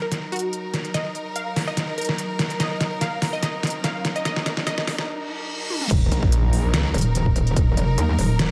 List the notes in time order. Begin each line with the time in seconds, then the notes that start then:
Already playing: F#3 D#4 A#4, riser
0.02 A#4
0.12 snare, closed hi-hat
0.32 F#4, closed hi-hat
0.36 closed hi-hat
0.39 closed hi-hat
0.53 closed hi-hat
0.74 snare, closed hi-hat
0.85 closed hi-hat
0.94 D#5, snare, closed hi-hat
1.15 closed hi-hat
1.36 F5, closed hi-hat
1.56 snare, open hi-hat
1.67 D#5
1.77 snare, closed hi-hat
1.98 A#4, closed hi-hat
2.01 closed hi-hat
2.05 closed hi-hat
2.09 snare
2.18 closed hi-hat
2.39 snare, closed hi-hat
2.50 closed hi-hat
2.60 D#5, snare, closed hi-hat
2.81 snare, closed hi-hat
3.01 F5, snare, closed hi-hat
3.22 snare, open hi-hat
3.33 D#5
3.43 D#5, snare, closed hi-hat
3.63 snare, closed hi-hat
3.67 closed hi-hat
3.70 closed hi-hat
3.84 F5, snare, closed hi-hat
4.05 snare, closed hi-hat
4.16 D#5, closed hi-hat
4.25 D#5, snare, closed hi-hat
4.36 snare
4.46 snare, closed hi-hat
4.57 snare
4.67 D#5, snare, closed hi-hat
4.78 snare
4.87 snare, open hi-hat
4.98 snare
5.08 reverse cymbal
5.70 high tom
5.81 mid tom
5.91 D#1 F#3 D#4 A#4, kick, closed hi-hat, crash, impact
6.12 A#1, closed hi-hat
6.23 kick
6.32 closed hi-hat
6.53 open hi-hat
6.74 C#2, snare, closed hi-hat
6.94 D#1, closed hi-hat
6.98 closed hi-hat
7.01 closed hi-hat
7.15 closed hi-hat
7.26 kick
7.36 D#1, closed hi-hat
7.47 closed hi-hat
7.56 D#1, kick, closed hi-hat
7.77 F1, closed hi-hat
7.98 D#2, closed hi-hat
8.19 D#1, open hi-hat
8.39 snare, closed hi-hat